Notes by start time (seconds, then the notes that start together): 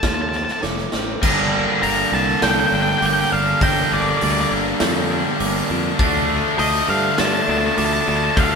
Already playing: F2 F3 A3
0.03 D#2 F4 F6, kick, snare
0.07 A5
0.14 A5
0.22 A5
0.29 C4 A5, snare
0.36 A5
0.45 A5, snare
0.52 A5
0.63 F1 A3 D6, snare
0.78 snare
0.92 A1 C4, snare
1.22 G1 G2 D3 G3 A#3 D4 A#6, kick, crash
1.54 A#3
1.82 G1 G3 A#5 A6, open hi-hat
2.12 C2 A#3 A5
2.42 C2 A4 G5 G6, snare, open hi-hat
2.51 G5
2.60 G5
2.66 G5
2.72 G1 D4 G5
2.82 G5
2.89 G5
2.98 G5 D6, open hi-hat
3.02 G1 A#3 G5
3.14 G5
3.20 G5
3.32 G1 D4 F5
3.61 G1 G2 D3 G3 A#3 D4 G5 A#6, kick, open hi-hat
3.91 G1 A#3 D5
4.01 D5
4.10 D5
4.17 D5 A6, open hi-hat
4.22 D2 G3 D5
4.32 D5
4.41 D5
4.51 G1 A#3
4.80 F2 A4 G6, snare, open hi-hat
5.10 D4
5.40 G1 A#3 D6, open hi-hat
5.70 F2 D4
5.98 D2 D3 F3 A3 D4 A6, kick, open hi-hat
6.30 A3
6.58 D2 D3 D#5 G6, open hi-hat
6.88 G2 A3 F5
7.18 G2 F4 A5 F6, snare, open hi-hat
7.26 A5
7.34 A5
7.42 A5
7.48 D2 D4 A5
7.58 A5
7.66 A5
7.77 D2 A3 A5 D6, open hi-hat
7.85 A5
7.93 A5
8.01 A5
8.07 D2 D4 A5
8.17 A5
8.24 A5
8.31 A5
8.36 D2 D3 F3 A3 D4 F5 A6, kick, open hi-hat
8.44 F5
8.52 F5